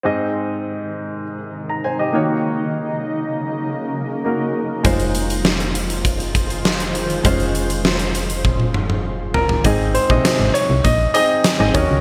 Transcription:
0.03 0.91 G#2 medium
0.03 2.12 C3 medium
0.03 2.13 D#3 medium
0.03 2.12 G#3 medium
0.03 2.10 C4 medium
0.03 4.80 D#4 medium
0.03 2.11 D#4 medium
0.03 1.23 G#4 medium
0.03 1.23 D#5 medium
1.69 1.84 A#5 medium
1.84 1.99 C5 soft
1.84 1.99 G#5 medium
1.99 2.28 G4 soft
1.99 2.28 D#5 medium
2.13 4.82 C#3 medium
2.13 3.00 D#3 medium
2.13 4.82 F#3 medium
2.13 4.20 A#3 medium
2.13 4.82 A#3 medium
2.13 4.20 D#4 medium
2.13 4.21 F#4 medium
2.13 4.21 C#5 medium
4.24 4.85 A#3 soft
4.24 4.83 D#4 soft
4.24 4.85 F#4 soft
4.24 4.85 A#4 soft
4.83 7.21 F1 medium
4.83 7.23 D#3 medium
4.83 7.20 G#3 medium
4.83 9.61 G#3 medium
4.83 7.20 D#4 medium
4.83 7.21 F4 medium
4.83 9.61 F4 medium
4.83 9.61 C5 medium
4.83 7.21 C5 medium
4.83 kick medium
4.83 closed hi-hat medium
5.00 closed hi-hat soft
5.15 closed hi-hat medium
5.30 closed hi-hat medium
5.45 snare loud
5.60 closed hi-hat soft
5.75 closed hi-hat medium
5.90 closed hi-hat medium
6.05 kick medium
6.05 closed hi-hat medium
6.20 closed hi-hat soft
6.35 kick medium
6.35 closed hi-hat medium
6.50 closed hi-hat soft
6.65 snare loud
6.80 closed hi-hat soft
6.95 closed hi-hat medium
7.10 closed hi-hat soft
7.23 9.61 F1 medium
7.23 9.62 C#3 medium
7.23 9.60 G#3 medium
7.23 9.61 C#4 medium
7.23 9.61 F4 medium
7.23 9.61 C5 medium
7.23 kick medium
7.23 closed hi-hat medium
7.40 closed hi-hat soft
7.55 closed hi-hat medium
7.70 closed hi-hat soft
7.85 snare loud
7.99 closed hi-hat soft
8.15 closed hi-hat medium
8.30 closed hi-hat medium
8.45 kick medium
8.45 high tom soft
8.60 high tom soft
8.74 mid tom medium
8.90 mid tom medium
9.34 9.62 A#4 medium
9.34 floor tom medium
9.49 floor tom medium
9.64 9.98 G#1 loud
9.64 10.51 G#2 medium
9.64 10.02 C4 medium
9.64 10.02 D#4 medium
9.64 9.71 G#4 medium
9.64 10.03 G#4 medium
9.64 10.03 D#5 medium
9.64 kick medium
9.64 closed hi-hat medium
9.94 10.51 C5 medium
9.94 closed hi-hat medium
10.09 10.21 A#1 medium
10.09 10.98 C3 medium
10.09 10.98 D#4 medium
10.09 10.98 G#4 medium
10.09 10.98 D#5 medium
10.09 kick medium
10.25 snare loud
10.25 closed hi-hat medium
10.40 10.51 G#1 medium
10.54 10.85 C#5 medium
10.54 closed hi-hat medium
10.70 10.81 C2 medium
10.84 11.07 A#1 medium
10.84 11.13 D#5 medium
10.84 kick medium
10.84 closed hi-hat medium
11.14 11.52 C4 medium
11.14 11.52 D#4 medium
11.14 11.53 G#4 medium
11.14 11.70 D#5 loud
11.14 11.53 D#5 medium
11.14 closed hi-hat medium
11.44 snare medium
11.44 closed hi-hat medium
11.59 11.71 G#1 medium
11.59 11.74 C4 medium
11.59 11.75 D#4 medium
11.59 11.75 G#4 medium
11.59 11.74 D#5 medium
11.74 11.86 D#2 medium
11.74 12.01 D#3 medium
11.74 12.01 C#4 medium
11.74 12.01 F#4 medium
11.74 12.01 A#4 medium
11.74 12.01 C#5 medium
11.74 12.01 D#5 medium
11.74 kick medium
11.74 closed hi-hat medium
11.90 12.01 C#2 medium

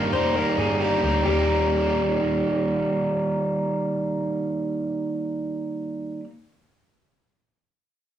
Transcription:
0.00 0.12 G2 medium
0.00 0.13 D#3 medium
0.00 0.13 G3 medium
0.00 0.13 A#3 medium
0.00 0.11 D#4 medium
0.00 0.13 A#4 medium
0.12 0.41 F1 medium
0.12 0.35 G3 soft
0.12 0.36 A#3 soft
0.12 0.35 D#4 medium
0.12 0.35 C5 medium
0.35 0.57 D#3 medium
0.35 0.58 G3 medium
0.35 0.58 A#3 medium
0.35 0.56 D#4 medium
0.35 0.58 A#4 medium
0.57 0.96 G1 medium
0.57 0.80 G3 soft
0.57 0.80 A#3 soft
0.57 0.80 D#4 soft
0.57 0.80 G#4 medium
0.80 1.02 G2 medium
0.80 1.03 D#3 medium
0.80 1.03 G3 medium
0.80 1.03 A#3 medium
0.80 1.01 D#4 medium
0.80 1.22 G4 medium
1.02 1.21 D2 medium
1.02 1.25 G3 soft
1.02 1.26 A#3 soft
1.02 1.25 D#4 soft
1.22 6.19 D#2 medium
1.22 6.20 D#3 medium
1.22 6.24 G3 medium
1.22 2.56 G4 medium
1.29 6.27 A#3 medium
1.29 6.30 D#4 medium

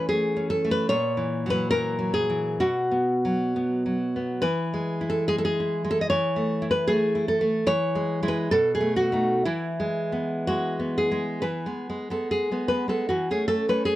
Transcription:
0.00 0.86 E3 medium
0.00 0.35 C#4 medium
0.09 0.63 A3 medium
0.09 0.48 G#4 loud
0.36 0.91 C#4 medium
0.50 0.70 A4 medium
0.65 0.91 A3 medium
0.71 0.89 B4 loud
0.89 2.57 A#2 medium
0.89 1.49 C#5 loud
1.17 1.70 E3 medium
1.46 1.97 F#3 medium
1.50 1.70 B4 loud
1.71 2.28 E3 medium
1.71 2.13 A#4 loud
1.99 2.60 F#3 medium
2.14 2.58 G#4 loud
2.30 2.61 E3 medium
2.60 4.40 B2 medium
2.60 3.96 F#4 medium
2.91 3.55 B3 soft
3.25 3.85 F#3 medium
3.56 4.15 B3 medium
3.86 4.45 F#3 soft
4.16 4.45 B3 soft
4.42 6.05 E3 medium
4.42 5.04 B4 loud
4.74 5.28 G#3 medium
5.01 5.59 E4 medium
5.10 5.28 A4 medium
5.28 5.83 G#3 medium
5.28 5.36 G#4 loud
5.38 5.44 A4 medium
5.45 5.89 G#4 loud
5.60 6.12 E4 medium
5.85 6.11 G#3 medium
5.91 6.01 A4 loud
6.01 6.09 D#5 medium
6.10 7.65 E3 medium
6.10 6.67 C#5 loud
6.36 6.88 A3 soft
6.62 7.14 E4 medium
6.71 6.90 B4 loud
6.87 7.40 A3 medium
6.87 7.27 G#4 loud
7.15 7.67 E4 medium
7.28 7.67 A4 loud
7.41 7.68 A3 medium
7.67 8.48 E3 medium
7.67 8.26 C#5 loud
7.95 8.21 G#3 medium
8.23 8.48 G#3 medium
8.23 8.49 E4 medium
8.28 8.50 B4 loud
8.51 9.42 B2 medium
8.51 8.73 A4 loud
8.75 8.96 G#4 loud
8.81 9.11 A3 medium
8.96 9.43 F#4 loud
9.12 9.41 A3 medium
9.12 9.42 D#4 medium
9.45 11.41 E3 medium
9.45 10.93 E4 loud
9.80 10.47 G#3 medium
10.12 10.78 B3 medium
10.47 11.10 G#3 medium
10.47 10.95 F#4 loud
10.79 11.44 B3 medium
10.98 11.41 G#4 medium
11.12 11.43 G#3 medium
11.42 11.65 E3 medium
11.42 12.04 B4 medium
11.66 11.88 G#3 soft
11.66 12.09 B3 soft
11.90 12.10 G#3 medium
12.10 12.50 G#3 soft
12.10 12.51 B3 medium
12.10 12.30 A4 medium
12.31 12.68 G#4 medium
12.52 12.87 G#3 soft
12.52 12.69 B3 soft
12.68 12.88 B3 medium
12.68 12.88 B4 medium
12.88 13.06 G#3 soft
12.88 13.06 B3 soft
12.88 13.08 A4 medium
13.09 13.28 E3 medium
13.09 13.28 F#4 medium
13.31 13.47 A3 soft
13.31 13.69 C#4 soft
13.31 13.47 G#4 medium
13.48 13.67 A3 medium
13.48 13.67 A4 loud
13.69 13.96 A3 soft
13.69 13.96 C#4 medium
13.69 13.85 B4 medium
13.85 13.96 G#4 medium

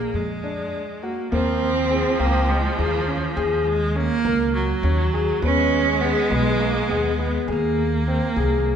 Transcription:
0.00 0.16 A#3 loud
0.00 0.21 G#4 medium
0.14 0.60 F2 medium
0.14 1.04 G#3 medium
0.44 0.80 D4 medium
1.02 1.30 A#3 medium
1.02 1.21 F#4 medium
1.31 2.02 D#2 loud
1.31 3.68 F3 loud
1.31 1.69 A#3 medium
1.31 2.21 C4 loud
1.90 2.09 G#4 medium
2.19 2.66 C#2 medium
2.19 2.50 A#3 loud
2.19 2.56 C4 medium
2.49 2.81 G#3 medium
2.78 3.25 D#2 loud
2.78 3.23 A#3 medium
2.78 2.96 G#4 medium
3.08 3.26 C#4 medium
3.37 4.07 D#2 loud
3.37 3.73 G#4 loud
3.67 3.97 G#3 loud
3.96 4.53 A#3 loud
3.96 4.14 C#4 medium
4.25 4.72 C#2 loud
4.25 4.62 A#4 medium
4.53 5.43 F#3 loud
4.83 5.30 D#2 loud
4.83 5.02 C#4 medium
5.13 5.32 G#4 medium
5.41 6.13 D#2 loud
5.41 7.49 G#3 loud
5.41 5.79 B3 medium
5.41 6.02 C#4 loud
6.01 6.31 B3 loud
6.01 6.20 G#4 medium
6.30 6.77 B1 loud
6.30 6.61 G#3 medium
6.30 6.67 B3 medium
6.60 6.90 A#3 medium
6.89 7.36 D#2 medium
6.89 7.33 B3 medium
6.89 7.08 G#4 medium
7.19 7.37 B3 medium
7.48 8.18 D#2 loud
7.48 8.76 A#3 loud
7.48 7.85 G#4 medium
8.08 8.26 C4 medium
8.36 8.76 C2 loud
8.36 8.73 G#4 medium

